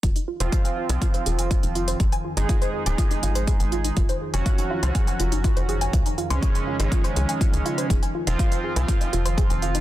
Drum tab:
HH |xx-xxx-xxxxxxxxx|xx-xxx-xxxxxxxxx|xx-xxx-xxxxxxxxx|xxxxxx-xxxxxxxxx|
BD |o---o---o---o---|o---o---o---o---|o---o---o---o---|o---o---o---o---|

HH |xx-xxx-xxxxxxxxx|
BD |o---o---o---o---|